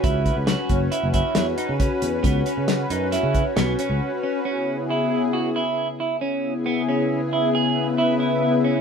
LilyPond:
<<
  \new Staff \with { instrumentName = "Clean electric guitar" } { \time 5/4 \key cis \minor \tempo 4 = 136 e'4 fis'4 e'8 e'4 dis'8 cis'4 | b8 cis'4 dis'8 e'4 b8 cis'4 cis'8 | cis'4 e'4 fis'8 e'4 e'8 cis'4 | b8 cis'4 e'8 gis'4 e'8 e'4 cis'8 | }
  \new Staff \with { instrumentName = "Analog synth pad" } { \time 5/4 \key cis \minor r1 r4 | r1 r4 | <cis b e' gis'>4.~ <cis b e' gis'>16 r2 r8 <cis b e' gis'>8.~ | <cis b e' gis'>8. r4 r16 <cis b e' b'>4. r4. | }
  \new Staff \with { instrumentName = "Fretless electric bass" } { \clef bass \time 5/4 \key cis \minor cis,8. cis,8 r16 fis,,8 r16 fis,,8 r16 e,8 r16 cis8 r16 e,8 | cis,8 r16 cis8. fis,8. cis8 r16 b,,8 r16 cis,16 r4 | r1 r4 | r1 r4 | }
  \new DrumStaff \with { instrumentName = "Drums" } \drummode { \time 5/4 <hh bd>8 <hh bd>8 <hh sn>8 <hh bd>8 hh8 <hh bd>8 <hh sn>8 hh8 <hh bd>8 hh8 | <hh bd>8 hh8 <hh sn>8 hh8 <hh sn>8 <hh bd>8 <hh sn>8 hh8 r4 | r4 r4 r4 r4 r4 | r4 r4 r4 r4 r4 | }
>>